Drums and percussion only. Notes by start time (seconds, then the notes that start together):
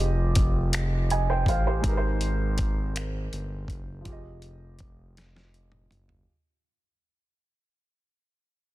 0.35 kick, closed hi-hat
0.73 finger snap, closed hi-hat
1.10 closed hi-hat
1.46 kick, closed hi-hat
1.84 kick, closed hi-hat
2.21 closed hi-hat
2.58 kick, closed hi-hat
2.96 finger snap, closed hi-hat
3.33 closed hi-hat
3.68 kick, closed hi-hat
4.05 kick, closed hi-hat
4.42 closed hi-hat
4.79 kick, closed hi-hat
5.17 snare, closed hi-hat
5.36 snare
5.54 closed hi-hat
5.72 mid tom
5.91 closed hi-hat, mid tom
6.09 floor tom